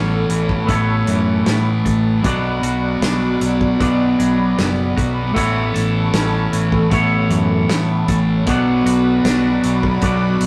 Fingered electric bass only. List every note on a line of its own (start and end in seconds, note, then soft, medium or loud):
0.00 0.24 A1 medium
0.29 0.63 A1 medium
0.68 1.02 A1 medium
1.07 1.41 F#2 medium
1.46 1.80 A2 medium
1.85 2.19 A1 medium
2.24 2.58 B1 medium
2.62 2.96 B1 medium
3.01 3.35 B1 medium
3.41 3.74 B1 medium
3.80 4.14 B1 medium
4.20 4.53 B1 medium
4.58 4.91 F#1 medium
4.97 5.31 B1 medium
5.36 5.69 A1 medium
5.76 6.09 A1 medium
6.14 6.47 A1 medium
6.52 6.86 A1 medium
6.91 7.25 A1 medium
7.30 7.64 F#2 medium
7.68 8.02 A2 medium
8.08 8.42 A1 medium
8.47 8.80 B1 medium
8.86 9.19 B1 medium
9.24 9.58 B1 medium
9.64 9.97 B1 medium
10.02 10.36 B1 medium
10.41 10.47 B1 medium